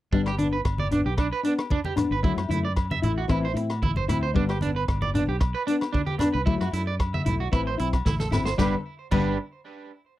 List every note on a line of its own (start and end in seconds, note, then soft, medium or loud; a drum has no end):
0.12 0.63 G1 medium
0.12 0.29 G3 medium
0.12 0.29 B3 medium
0.12 0.20 D4 medium
0.12 0.30 D4 medium
0.12 kick medium
0.26 0.34 G4 medium
0.26 cross-stick medium
0.26 low agogo medium
0.39 0.56 B3 soft
0.39 0.55 D4 medium
0.39 0.46 D4 medium
0.39 closed hi-hat medium
0.39 high conga medium
0.53 0.60 B4 medium
0.65 1.04 G1 medium
0.65 kick medium
0.65 cross-stick medium
0.65 low agogo medium
0.78 0.87 D5 medium
0.78 high conga medium
0.91 1.09 B3 soft
0.91 1.08 D4 medium
0.91 1.00 D4 medium
0.91 closed hi-hat medium
0.91 low conga medium
1.06 1.31 B1 medium
1.06 1.13 G4 medium
1.18 1.26 D4 medium
1.18 kick medium
1.18 cross-stick medium
1.18 low agogo medium
1.33 1.39 B4 medium
1.43 1.62 B3 soft
1.43 1.60 D4 medium
1.43 1.53 D4 medium
1.43 closed hi-hat medium
1.58 cross-stick medium
1.58 low agogo medium
1.70 1.79 D4 medium
1.70 kick medium
1.70 high conga medium
1.84 1.92 G4 medium
1.84 high conga medium
1.96 2.14 B3 soft
1.96 2.13 D4 medium
1.96 cross-stick medium
1.96 closed hi-hat soft
1.96 low conga medium
1.96 low agogo medium
2.11 2.23 G1 medium
2.11 2.19 B4 medium
2.23 2.36 D2 loud
2.23 2.40 F#3 medium
2.23 2.40 A3 medium
2.23 2.32 E4 medium
2.23 2.41 E4 medium
2.23 kick medium
2.37 2.49 F#2 medium
2.37 cross-stick medium
2.37 low agogo medium
2.49 3.00 F#2 medium
2.49 2.67 A3 medium
2.49 2.66 E4 medium
2.49 2.58 E4 medium
2.49 closed hi-hat medium
2.49 high conga medium
2.65 2.72 D5 medium
2.76 kick medium
2.76 cross-stick medium
2.76 low agogo medium
2.91 2.98 E5 medium
2.91 high conga medium
3.02 3.28 A1 medium
3.02 3.20 A3 soft
3.02 3.19 E4 medium
3.02 3.11 E4 medium
3.02 closed hi-hat soft
3.02 low conga medium
3.18 3.25 F#4 medium
3.28 3.54 A1 loud
3.28 3.45 E3 medium
3.28 3.46 C4 medium
3.28 3.46 E4 loud
3.28 3.38 E4 medium
3.28 kick medium
3.28 cross-stick medium
3.28 low agogo medium
3.45 3.51 C5 medium
3.53 3.81 A2 medium
3.53 3.73 C4 soft
3.53 3.71 E4 medium
3.53 muted clean electric guitar stroke medium
3.53 closed hi-hat medium
3.70 cross-stick medium
3.70 low agogo medium
3.82 3.95 A1 medium
3.82 3.90 E4 medium
3.82 kick medium
3.82 high conga medium
3.96 4.08 F#1 medium
3.96 4.04 C5 medium
3.96 high conga medium
4.08 4.37 D2 medium
4.08 4.26 C4 soft
4.08 4.25 E4 medium
4.08 4.17 E4 medium
4.08 cross-stick medium
4.08 closed hi-hat soft
4.08 low conga medium
4.08 low agogo medium
4.23 4.30 C5 medium
4.34 4.86 G1 loud
4.34 4.51 G3 medium
4.34 4.51 B3 medium
4.34 4.52 D4 medium
4.34 4.43 D4 medium
4.34 kick medium
4.49 4.57 G4 medium
4.49 cross-stick medium
4.49 low agogo medium
4.61 4.79 B3 soft
4.61 4.70 D4 medium
4.61 muted nylon-string guitar stroke medium
4.61 closed hi-hat medium
4.61 high conga medium
4.76 4.83 B4 medium
4.88 5.27 G1 loud
4.88 kick medium
4.88 cross-stick medium
4.88 low agogo medium
5.02 5.09 D5 medium
5.02 high conga medium
5.14 5.32 B3 soft
5.14 5.31 D4 medium
5.14 5.23 D4 medium
5.14 closed hi-hat soft
5.14 low conga medium
5.28 5.53 B1 medium
5.28 5.36 G4 medium
5.41 muted clean electric guitar stroke medium
5.41 kick medium
5.41 cross-stick medium
5.41 low agogo medium
5.55 5.62 B4 medium
5.67 5.85 B3 medium
5.67 5.75 D4 medium
5.67 5.84 D4 medium
5.67 closed hi-hat medium
5.81 cross-stick medium
5.81 low agogo medium
5.93 6.01 D4 medium
5.93 kick medium
5.93 high conga medium
6.06 6.14 G4 medium
6.06 high conga medium
6.19 6.38 B3 medium
6.19 6.28 D4 medium
6.19 6.37 D4 medium
6.19 cross-stick medium
6.19 closed hi-hat soft
6.19 low conga medium
6.19 low agogo medium
6.34 6.46 C2 medium
6.34 6.41 B4 medium
6.46 6.60 D2 loud
6.46 6.63 F#3 medium
6.46 6.63 A3 medium
6.46 6.54 E4 medium
6.46 6.64 E4 loud
6.46 kick medium
6.61 6.72 F#2 medium
6.61 6.68 F#4 medium
6.61 cross-stick medium
6.61 low agogo medium
6.73 7.24 F#2 medium
6.73 6.91 A3 soft
6.73 6.89 E4 medium
6.73 6.81 E4 medium
6.73 closed hi-hat medium
6.87 6.94 D5 medium
7.00 kick medium
7.00 cross-stick medium
7.00 low agogo medium
7.14 7.21 E5 medium
7.14 high conga medium
7.25 7.52 B1 loud
7.25 7.44 A3 soft
7.25 7.42 E4 medium
7.25 7.34 E4 medium
7.25 closed hi-hat medium
7.25 low conga medium
7.40 7.47 F#4 medium
7.52 7.78 A1 loud
7.52 7.69 E3 medium
7.52 7.69 C4 medium
7.52 7.60 E4 medium
7.52 7.69 E4 medium
7.52 kick medium
7.52 cross-stick medium
7.52 low agogo medium
7.67 7.74 C5 medium
7.78 8.04 B1 medium
7.78 7.96 C4 soft
7.78 7.95 E4 medium
7.78 7.87 E4 medium
7.78 closed hi-hat medium
7.93 kick medium
7.93 cross-stick medium
7.93 low agogo medium
8.05 8.30 A1 medium
8.05 8.14 E4 medium
8.05 kick medium
8.05 snare medium
8.05 high conga medium
8.19 8.27 A4 medium
8.19 snare soft
8.19 high conga medium
8.31 8.56 G1 medium
8.31 8.49 C4 medium
8.31 8.48 E4 medium
8.31 8.40 E4 medium
8.31 snare medium
8.31 low conga medium
8.31 low agogo medium
8.45 8.53 C5 medium
8.45 snare medium
8.58 8.74 G1 medium
8.58 8.75 G3 medium
8.58 8.76 B3 medium
8.58 8.74 D4 medium
8.58 8.74 G4 medium
8.58 8.74 B4 medium
8.58 muted nylon-string guitar stroke medium
8.58 kick medium
8.58 snare medium
8.58 high conga medium
8.58 low agogo loud
9.11 9.37 G1 medium
9.11 9.33 G3 medium
9.11 9.34 B3 medium
9.11 9.37 D4 medium
9.11 9.37 G4 medium
9.11 9.37 B4 medium
9.11 muted nylon-string guitar stroke medium
9.11 kick medium
9.11 crash medium
9.11 high conga medium
9.11 low agogo loud